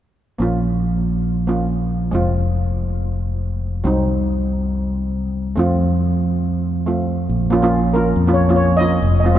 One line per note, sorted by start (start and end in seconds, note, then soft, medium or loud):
0.39 2.09 A#1 medium
0.39 1.45 A#3 medium
0.39 1.46 C#4 soft
0.39 1.47 F4 medium
1.47 2.12 A#3 soft
1.47 2.13 C#4 soft
1.47 2.13 F4 medium
2.11 3.82 F1 medium
2.11 3.81 G#3 medium
2.11 3.82 C4 medium
2.11 3.83 F4 medium
3.84 5.54 C2 medium
3.84 5.53 F#3 medium
3.84 5.54 C4 medium
3.84 5.55 D#4 medium
5.56 7.26 F2 medium
5.56 6.83 A3 medium
5.56 6.84 C4 medium
5.56 6.85 F4 medium
6.86 7.30 A3 soft
6.86 7.30 C4 soft
6.86 7.30 F4 soft
7.29 8.12 A#1 medium
7.50 7.58 A#3 medium
7.50 7.59 C#4 medium
7.50 7.59 F4 medium
7.62 7.82 A#3 medium
7.62 7.82 C#4 medium
7.62 7.83 F4 medium
7.93 8.14 A#3 medium
7.93 8.14 C#4 medium
7.93 8.15 F4 medium
7.93 8.38 A#4 medium
8.16 8.98 F2 medium
8.27 8.40 A#3 medium
8.27 8.40 C#4 medium
8.27 8.41 F4 medium
8.34 8.55 C#5 medium
8.49 8.68 A#3 medium
8.49 8.69 C#4 medium
8.49 8.69 F4 medium
8.56 8.80 C#5 medium
8.77 9.02 A#3 medium
8.77 9.02 C#4 medium
8.77 9.19 D#5 medium
8.81 9.03 F4 medium
9.02 9.39 F1 medium
9.20 9.39 D#5 medium
9.24 9.31 G#3 medium
9.24 9.31 C4 medium
9.24 9.32 F4 medium
9.35 9.39 G#3 medium
9.35 9.39 C4 medium